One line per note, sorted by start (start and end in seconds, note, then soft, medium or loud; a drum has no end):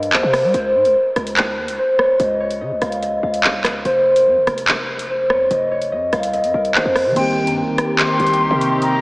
0.00 0.14 G2 loud
0.00 0.33 A#4 medium
0.00 0.19 C#5 medium
0.00 1.50 D#5 medium
0.00 1.17 F5 medium
0.00 closed hi-hat medium
0.13 0.23 D#2 loud
0.13 0.54 C5 medium
0.13 clap loud
0.23 0.45 C3 loud
0.33 0.85 A#4 medium
0.33 cross-stick loud
0.33 open hi-hat medium
0.44 0.54 G3 loud
0.54 0.76 C#2 loud
0.54 1.78 C5 loud
0.54 closed hi-hat medium
0.75 0.87 G#2 loud
0.85 0.95 C#2 loud
0.85 1.16 A#4 medium
0.85 closed hi-hat medium
1.16 1.59 C#2 loud
1.16 3.28 A#4 medium
1.16 cross-stick loud
1.16 closed hi-hat medium
1.27 closed hi-hat medium
1.37 clap loud
1.37 closed hi-hat medium
1.58 1.69 D#2 loud
1.68 1.78 C#2 loud
1.68 closed hi-hat medium
1.78 2.05 C5 medium
1.99 2.40 C#5 medium
1.99 cross-stick loud
2.20 2.62 C#2 loud
2.20 2.61 D#5 medium
2.20 closed hi-hat medium
2.40 3.91 C#5 medium
2.51 closed hi-hat medium
2.61 2.73 C#3 loud
2.61 3.02 D#5 medium
2.71 2.81 C#2 loud
2.82 3.21 C#2 loud
2.82 3.23 F5 medium
2.82 cross-stick loud
2.82 closed hi-hat medium
2.92 closed hi-hat medium
3.02 4.81 D#5 medium
3.02 closed hi-hat medium
3.23 3.56 C#2 loud
3.23 4.89 F5 medium
3.34 closed hi-hat medium
3.44 clap loud
3.54 3.71 C2 loud
3.64 cross-stick loud
3.64 clap medium
3.64 closed hi-hat medium
3.70 3.84 C#2 loud
3.85 4.28 F1 loud
3.85 5.09 C5 loud
3.85 closed hi-hat medium
4.16 4.47 A#4 medium
4.16 closed hi-hat medium
4.27 4.38 F2 loud
4.37 4.47 F1 loud
4.47 5.31 F1 loud
4.47 6.54 A#4 medium
4.47 cross-stick loud
4.47 closed hi-hat medium
4.58 closed hi-hat medium
4.68 clap loud
4.68 closed hi-hat medium
4.99 closed hi-hat medium
5.09 5.36 C5 medium
5.30 5.50 F2 loud
5.30 5.71 C#5 medium
5.30 cross-stick medium
5.51 5.94 F1 loud
5.51 5.92 D#5 loud
5.51 closed hi-hat medium
5.71 6.81 C#5 medium
5.82 closed hi-hat medium
5.92 6.12 F2 loud
5.92 6.33 D#5 medium
6.13 6.45 C2 loud
6.13 7.79 F5 medium
6.13 cross-stick loud
6.13 closed hi-hat medium
6.23 closed hi-hat medium
6.33 8.12 D#5 medium
6.33 closed hi-hat medium
6.44 6.54 F2 loud
6.44 closed hi-hat medium
6.54 6.76 C2 loud
6.54 6.95 A#4 medium
6.65 closed hi-hat medium
6.75 6.85 G#1 loud
6.75 8.67 C5 medium
6.75 clap loud
6.85 7.07 F2 loud
6.96 9.01 A#4 medium
6.96 cross-stick loud
6.96 open hi-hat medium
7.06 7.16 C3 loud
7.12 9.01 D#3 medium
7.12 9.01 A#3 medium
7.16 7.49 C2 loud
7.16 9.01 D#3 medium
7.16 9.01 C4 medium
7.16 9.01 G4 medium
7.16 9.01 A#4 medium
7.16 7.55 G5 loud
7.16 8.40 C6 loud
7.16 closed hi-hat medium
7.16 crash loud
7.21 9.01 G4 medium
7.47 7.64 G2 loud
7.47 7.78 A#5 medium
7.47 closed hi-hat medium
7.63 7.77 C2 loud
7.78 9.01 A#5 medium
7.78 cross-stick loud
7.78 closed hi-hat medium
7.99 8.78 C6 loud
7.99 clap loud
7.99 closed hi-hat medium
8.20 8.49 C2 loud
8.20 closed hi-hat soft
8.27 closed hi-hat medium
8.33 closed hi-hat medium
8.40 8.67 C6 medium
8.51 9.01 C3 loud
8.61 9.01 C#6 medium
8.61 closed hi-hat medium
8.82 9.01 A#5 loud
8.82 9.01 D#6 loud
8.82 closed hi-hat medium